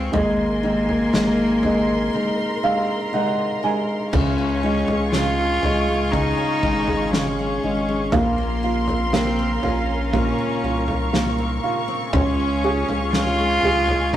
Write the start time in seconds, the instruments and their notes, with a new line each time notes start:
Already playing: sub bass C#2, steel-string acoustic guitar C#3 G#3 F4, upright piano G#3 F4 G#4, cello C4
0.12 sub bass G#1, upright piano G#3, steel-string acoustic guitar G#3, cello A#3, string section A#4 G#5 C6, floor tom
0.63 upright piano G#3, steel-string acoustic guitar C4
0.89 floor tom
1.13 sub bass G#1, upright piano G#3, steel-string acoustic guitar D#4, snare
1.63 upright piano G#3, steel-string acoustic guitar C4, floor tom
2.13 upright piano G#3, steel-string acoustic guitar D#4, string section A#5
2.63 upright piano G#3 F5, steel-string acoustic guitar C4
3.13 upright piano G#3 F#5, steel-string acoustic guitar D#4
3.63 upright piano G#3 G#5, steel-string acoustic guitar A#4
4.12 sub bass C#2, steel-string acoustic guitar C#3 F4, upright piano C#3, cello C#4, string section G#4 F5 C#6, kick, floor tom, crash
4.38 steel-string acoustic guitar C#4
4.63 upright piano G#3, steel-string acoustic guitar F4
4.88 sub bass C#2, steel-string acoustic guitar G#3, floor tom
5.12 upright piano C#3, steel-string acoustic guitar C#4, cello F4, snare
5.38 steel-string acoustic guitar G#3
5.63 sub bass C#2, upright piano G#3, steel-string acoustic guitar C#4, floor tom
5.88 steel-string acoustic guitar G#3
6.11 steel-string acoustic guitar C#3 F4, upright piano C#3, cello D#4, kick, floor tom
6.38 steel-string acoustic guitar C#4
6.63 sub bass G#1, upright piano G#3, steel-string acoustic guitar F4, kick
6.87 steel-string acoustic guitar G#3, floor tom
7.11 upright piano C#3, cello C#4, steel-string acoustic guitar C#4, snare
7.39 steel-string acoustic guitar G#3
7.63 sub bass G#1, upright piano G#3, steel-string acoustic guitar C#4
7.89 steel-string acoustic guitar G#3
8.11 sub bass A#1, steel-string acoustic guitar A#2 F4, cello A#3, upright piano A#3, string section A#4 F5 C6, kick, floor tom
8.38 steel-string acoustic guitar C#4
8.63 steel-string acoustic guitar F4, upright piano F4
8.88 steel-string acoustic guitar C4, floor tom
9.11 upright piano A#3, cello C4, snare
9.39 steel-string acoustic guitar C4
9.63 sub bass A#1, cello C#4, steel-string acoustic guitar C#4, upright piano F4, floor tom
10.13 steel-string acoustic guitar A#2 F4, upright piano A#3, string section C#6, kick, floor tom
10.38 steel-string acoustic guitar C#4
10.64 sub bass C2, upright piano F4, steel-string acoustic guitar F4
10.88 floor tom
11.13 upright piano A#3, steel-string acoustic guitar C#4, snare
11.38 steel-string acoustic guitar C4
11.63 steel-string acoustic guitar C#4, upright piano F4
11.88 steel-string acoustic guitar C4
12.13 sub bass C#2, steel-string acoustic guitar C#3 F4, upright piano C#4, cello C#4, string section G#4 F5, kick, floor tom
12.39 steel-string acoustic guitar C#4
12.64 steel-string acoustic guitar F4, upright piano G#4
12.89 sub bass C#2, steel-string acoustic guitar G#3, floor tom
13.13 upright piano C#4, steel-string acoustic guitar C#4, cello F4, snare
13.39 steel-string acoustic guitar G#3
13.63 sub bass C#2, steel-string acoustic guitar C#4, upright piano G#4, floor tom
13.88 steel-string acoustic guitar G#3, floor tom
14.13 floor tom